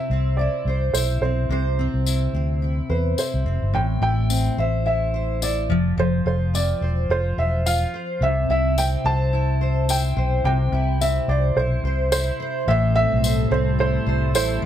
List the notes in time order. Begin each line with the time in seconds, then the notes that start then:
Already playing: C3 C4 E4 C5 E5
0.10 C2 C4
0.37 E4 D5
0.65 C2 C5
0.93 B1 E4 C5, tambourine
1.21 B1 C4 C5
1.49 C2 C3 C5
1.79 C4
1.94 C2
2.06 E4, tambourine
2.33 D2 C4
2.62 E4
2.90 E2 B4 C5
3.18 E4 C5, tambourine
3.34 C2
3.45 F1 C4
3.62 G1
3.73 A1 A2 G5
4.01 A1 E4 G5
4.30 C4, tambourine
4.57 A1 C5 E5
4.86 E4 E5
5.14 C5
5.42 E4 D5, tambourine
5.69 F1 F3
5.97 F1 F3 C5
6.26 F1 F4 C5
6.54 C4 D5, tambourine
6.81 E1 C5
7.09 F1 F4 C5
7.38 E1 C5 E5
7.66 F4 F5, tambourine
7.94 C5
8.21 C2 C3 E5
8.49 C2 E4 E5
8.78 C4 G5, tambourine
9.04 C2 C5 A5
9.33 E4
9.61 C5
9.89 E4 G5, tambourine
10.17 B1 C5
10.44 C2 C3 G5
10.72 C2 E4
11.01 C4 E5, tambourine
11.28 C2 C5 D5
11.56 B1 E4 C5
11.84 C2 C5
12.12 E4 C5, tambourine
12.40 C5
12.67 A1 A2 G3 A3 C4 E4 A4 C5 E5
12.96 C4 E5
13.12 B1
13.24 C5, tambourine
13.51 C2 C4 C5
13.79 E4 C5
14.06 C2 C5
14.34 A1 E4 C5, tambourine
14.62 F1 F3 F4